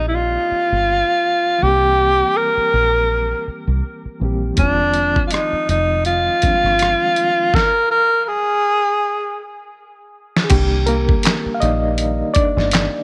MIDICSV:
0, 0, Header, 1, 6, 480
1, 0, Start_track
1, 0, Key_signature, -3, "minor"
1, 0, Tempo, 740741
1, 1044, Time_signature, 4, 2, 24, 8
1, 8445, End_track
2, 0, Start_track
2, 0, Title_t, "Tenor saxophone"
2, 0, Program_c, 0, 66
2, 53, Note_on_c, 0, 64, 52
2, 98, Note_on_c, 0, 65, 82
2, 107, Note_off_c, 0, 64, 0
2, 1055, Note_on_c, 0, 67, 100
2, 1065, Note_off_c, 0, 65, 0
2, 1535, Note_on_c, 0, 70, 86
2, 1545, Note_off_c, 0, 67, 0
2, 2250, Note_off_c, 0, 70, 0
2, 2972, Note_on_c, 0, 62, 84
2, 3382, Note_off_c, 0, 62, 0
2, 3417, Note_on_c, 0, 65, 50
2, 3449, Note_on_c, 0, 63, 73
2, 3459, Note_off_c, 0, 65, 0
2, 3687, Note_off_c, 0, 63, 0
2, 3696, Note_on_c, 0, 63, 80
2, 3913, Note_off_c, 0, 63, 0
2, 3927, Note_on_c, 0, 65, 92
2, 4894, Note_on_c, 0, 70, 103
2, 4903, Note_off_c, 0, 65, 0
2, 5123, Note_off_c, 0, 70, 0
2, 5127, Note_on_c, 0, 70, 82
2, 5340, Note_off_c, 0, 70, 0
2, 5340, Note_on_c, 0, 70, 53
2, 5368, Note_on_c, 0, 68, 85
2, 5378, Note_off_c, 0, 70, 0
2, 6086, Note_off_c, 0, 68, 0
2, 8445, End_track
3, 0, Start_track
3, 0, Title_t, "Reed electric piano"
3, 0, Program_c, 1, 4
3, 0, Control_c, 1, 64, 127
3, 0, Note_on_c, 1, 51, 50
3, 0, Note_on_c, 1, 58, 48
3, 0, Note_on_c, 1, 60, 46
3, 0, Note_on_c, 1, 67, 59
3, 0, Note_on_c, 1, 74, 50
3, 1007, Note_off_c, 1, 51, 0
3, 1014, Note_off_c, 1, 58, 0
3, 1021, Note_off_c, 1, 60, 0
3, 1027, Note_on_c, 1, 52, 50
3, 1028, Note_off_c, 1, 74, 0
3, 1042, Note_on_c, 1, 55, 45
3, 1053, Control_c, 1, 64, 0
3, 1056, Note_on_c, 1, 58, 48
3, 1057, Note_off_c, 1, 67, 0
3, 1070, Note_on_c, 1, 60, 45
3, 1084, Note_on_c, 1, 67, 55
3, 1186, Control_c, 1, 64, 127
3, 2689, Note_off_c, 1, 52, 0
3, 2697, Note_off_c, 1, 55, 0
3, 2704, Note_off_c, 1, 58, 0
3, 2711, Note_off_c, 1, 60, 0
3, 2718, Note_off_c, 1, 67, 0
3, 2722, Note_on_c, 1, 52, 50
3, 2731, Note_on_c, 1, 55, 47
3, 2736, Note_on_c, 1, 58, 47
3, 2741, Note_on_c, 1, 60, 46
3, 2752, Note_on_c, 1, 67, 53
3, 2946, Note_on_c, 1, 51, 55
3, 2961, Note_on_c, 1, 53, 44
3, 2963, Note_off_c, 1, 52, 0
3, 2967, Note_off_c, 1, 55, 0
3, 2970, Note_off_c, 1, 58, 0
3, 2972, Control_c, 1, 64, 0
3, 2973, Note_off_c, 1, 60, 0
3, 2973, Note_on_c, 1, 56, 47
3, 2978, Note_off_c, 1, 67, 0
3, 2988, Note_on_c, 1, 60, 51
3, 3003, Note_on_c, 1, 65, 53
3, 3094, Control_c, 1, 64, 127
3, 4131, Note_off_c, 1, 51, 0
3, 4138, Note_off_c, 1, 53, 0
3, 4145, Note_off_c, 1, 56, 0
3, 4152, Note_off_c, 1, 60, 0
3, 4157, Note_on_c, 1, 51, 38
3, 4160, Note_off_c, 1, 65, 0
3, 4165, Note_on_c, 1, 53, 38
3, 4172, Note_on_c, 1, 55, 27
3, 4178, Note_on_c, 1, 60, 39
3, 4186, Note_on_c, 1, 62, 47
3, 4213, Note_on_c, 1, 56, 39
3, 4215, Note_off_c, 1, 55, 0
3, 4881, Note_off_c, 1, 51, 0
3, 4884, Note_off_c, 1, 53, 0
3, 4891, Note_off_c, 1, 60, 0
3, 4892, Control_c, 1, 64, 0
3, 4895, Note_off_c, 1, 62, 0
3, 4908, Note_off_c, 1, 56, 0
3, 6766, Note_on_c, 1, 68, 58
3, 6803, Note_on_c, 1, 67, 90
3, 6805, Note_off_c, 1, 68, 0
3, 6810, Note_on_c, 1, 51, 51
3, 6812, Note_on_c, 1, 58, 53
3, 6815, Note_on_c, 1, 62, 61
3, 6817, Note_on_c, 1, 55, 70
3, 6917, Control_c, 1, 64, 127
3, 7034, Note_off_c, 1, 55, 0
3, 7040, Note_on_c, 1, 70, 94
3, 7047, Note_off_c, 1, 58, 0
3, 7051, Note_off_c, 1, 67, 0
3, 7054, Note_on_c, 1, 58, 75
3, 7136, Note_off_c, 1, 51, 0
3, 7139, Note_off_c, 1, 62, 0
3, 7463, Note_off_c, 1, 58, 0
3, 7481, Note_on_c, 1, 77, 84
3, 7495, Note_off_c, 1, 70, 0
3, 7519, Note_on_c, 1, 75, 91
3, 7523, Note_off_c, 1, 77, 0
3, 7531, Note_on_c, 1, 51, 49
3, 7532, Note_on_c, 1, 58, 42
3, 7535, Note_on_c, 1, 74, 52
3, 7539, Note_on_c, 1, 63, 75
3, 7744, Note_off_c, 1, 51, 0
3, 7745, Note_off_c, 1, 58, 0
3, 7746, Note_off_c, 1, 74, 0
3, 7976, Note_off_c, 1, 75, 0
3, 7985, Note_off_c, 1, 63, 0
3, 7994, Note_on_c, 1, 74, 109
3, 8016, Note_on_c, 1, 62, 81
3, 8445, Note_off_c, 1, 62, 0
3, 8445, Note_off_c, 1, 74, 0
3, 8445, End_track
4, 0, Start_track
4, 0, Title_t, "Fingered electric bass"
4, 0, Program_c, 2, 33
4, 0, Note_on_c, 2, 34, 80
4, 233, Note_off_c, 2, 34, 0
4, 467, Note_on_c, 2, 31, 81
4, 655, Note_off_c, 2, 31, 0
4, 1054, Note_on_c, 2, 36, 81
4, 1435, Note_off_c, 2, 36, 0
4, 1773, Note_on_c, 2, 34, 83
4, 2154, Note_off_c, 2, 34, 0
4, 2381, Note_on_c, 2, 36, 72
4, 2465, Note_off_c, 2, 36, 0
4, 2729, Note_on_c, 2, 34, 64
4, 2920, Note_off_c, 2, 34, 0
4, 2971, Note_on_c, 2, 29, 89
4, 3353, Note_off_c, 2, 29, 0
4, 3685, Note_on_c, 2, 29, 72
4, 4069, Note_off_c, 2, 29, 0
4, 4301, Note_on_c, 2, 31, 78
4, 4492, Note_off_c, 2, 31, 0
4, 6810, Note_on_c, 2, 36, 106
4, 7192, Note_off_c, 2, 36, 0
4, 7532, Note_on_c, 2, 34, 88
4, 7914, Note_off_c, 2, 34, 0
4, 8144, Note_on_c, 2, 31, 95
4, 8334, Note_off_c, 2, 31, 0
4, 8445, End_track
5, 0, Start_track
5, 0, Title_t, "Muted fingered electric bass strokes"
5, 333, Note_on_c, 9, 29, 36
5, 398, Note_off_c, 9, 29, 0
5, 1667, Note_on_c, 9, 29, 38
5, 1732, Note_off_c, 9, 29, 0
5, 2253, Note_on_c, 9, 29, 41
5, 2318, Note_off_c, 9, 29, 0
5, 2627, Note_on_c, 9, 29, 33
5, 2692, Note_off_c, 9, 29, 0
5, 3581, Note_on_c, 9, 29, 40
5, 3646, Note_off_c, 9, 29, 0
5, 4170, Note_on_c, 9, 29, 45
5, 4235, Note_off_c, 9, 29, 0
5, 7425, Note_on_c, 9, 29, 43
5, 7490, Note_off_c, 9, 29, 0
5, 8013, Note_on_c, 9, 29, 47
5, 8078, Note_off_c, 9, 29, 0
5, 8445, End_track
6, 0, Start_track
6, 0, Title_t, "Drums"
6, 2961, Note_on_c, 9, 42, 66
6, 2966, Note_on_c, 9, 36, 85
6, 3025, Note_off_c, 9, 42, 0
6, 3031, Note_off_c, 9, 36, 0
6, 3199, Note_on_c, 9, 42, 51
6, 3264, Note_off_c, 9, 42, 0
6, 3345, Note_on_c, 9, 36, 72
6, 3410, Note_off_c, 9, 36, 0
6, 3438, Note_on_c, 9, 42, 68
6, 3461, Note_on_c, 9, 37, 87
6, 3503, Note_off_c, 9, 42, 0
6, 3526, Note_off_c, 9, 37, 0
6, 3687, Note_on_c, 9, 42, 51
6, 3752, Note_off_c, 9, 42, 0
6, 3919, Note_on_c, 9, 42, 55
6, 3984, Note_off_c, 9, 42, 0
6, 4160, Note_on_c, 9, 42, 61
6, 4169, Note_on_c, 9, 36, 71
6, 4224, Note_off_c, 9, 42, 0
6, 4234, Note_off_c, 9, 36, 0
6, 4316, Note_on_c, 9, 37, 28
6, 4381, Note_off_c, 9, 37, 0
6, 4401, Note_on_c, 9, 42, 67
6, 4422, Note_on_c, 9, 37, 86
6, 4465, Note_off_c, 9, 42, 0
6, 4487, Note_off_c, 9, 37, 0
6, 4642, Note_on_c, 9, 42, 58
6, 4707, Note_off_c, 9, 42, 0
6, 4884, Note_on_c, 9, 36, 80
6, 4901, Note_on_c, 9, 38, 66
6, 4949, Note_off_c, 9, 36, 0
6, 4966, Note_off_c, 9, 38, 0
6, 6717, Note_on_c, 9, 38, 73
6, 6782, Note_off_c, 9, 38, 0
6, 6802, Note_on_c, 9, 42, 69
6, 6805, Note_on_c, 9, 49, 79
6, 6807, Note_on_c, 9, 36, 105
6, 6866, Note_off_c, 9, 42, 0
6, 6870, Note_off_c, 9, 49, 0
6, 6872, Note_off_c, 9, 36, 0
6, 7042, Note_on_c, 9, 42, 63
6, 7106, Note_off_c, 9, 42, 0
6, 7185, Note_on_c, 9, 36, 94
6, 7250, Note_off_c, 9, 36, 0
6, 7278, Note_on_c, 9, 42, 72
6, 7297, Note_on_c, 9, 39, 86
6, 7301, Note_on_c, 9, 38, 119
6, 7343, Note_off_c, 9, 42, 0
6, 7361, Note_off_c, 9, 39, 0
6, 7366, Note_off_c, 9, 38, 0
6, 7527, Note_on_c, 9, 42, 59
6, 7592, Note_off_c, 9, 42, 0
6, 7762, Note_on_c, 9, 42, 65
6, 7827, Note_off_c, 9, 42, 0
6, 8000, Note_on_c, 9, 42, 78
6, 8009, Note_on_c, 9, 36, 85
6, 8065, Note_off_c, 9, 42, 0
6, 8074, Note_off_c, 9, 36, 0
6, 8154, Note_on_c, 9, 38, 38
6, 8219, Note_off_c, 9, 38, 0
6, 8239, Note_on_c, 9, 42, 77
6, 8255, Note_on_c, 9, 39, 77
6, 8260, Note_on_c, 9, 38, 96
6, 8304, Note_off_c, 9, 42, 0
6, 8320, Note_off_c, 9, 39, 0
6, 8325, Note_off_c, 9, 38, 0
6, 8445, End_track
0, 0, End_of_file